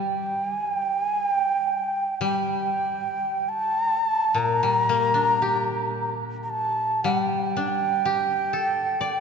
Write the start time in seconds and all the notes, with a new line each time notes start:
Already playing: G3 G5
0.49 G#5
0.75 G5
1.02 G#5
1.27 G5
2.21 G3 G5
3.49 A5
4.34 A#2 A#5
4.63 G3
4.89 A#3
5.14 D4
5.42 G4
6.43 A#5
6.50 A5
7.04 G3 F#5
7.20 G5
7.57 D4
8.05 G4
8.53 A4
9.01 D5